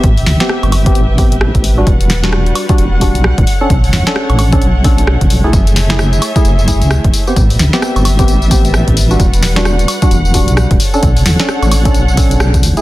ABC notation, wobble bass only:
X:1
M:4/4
L:1/16
Q:"Swing 16ths" 1/4=131
K:Bm
V:1 name="Wobble bass" clef=bass
A,,,2 D,, z2 G,,,3 A,,,4- A,,, A,,,3 | E,,,6 z2 E,,,3 B,,,2 E,,, z2 | B,,,2 E,, z2 A,,,3 B,,,4- B,,, F,,, B,,, B,,, | F,,,6 z2 F,,,3 C,,2 F,,, z2 |
A,,,2 D,, z2 G,,,3 A,,,4- A,,, A,,,3 | E,,,6 z2 E,,,3 B,,,2 E,,, z2 | B,,,2 E,, z2 A,,,3 B,,,6 D,, z |]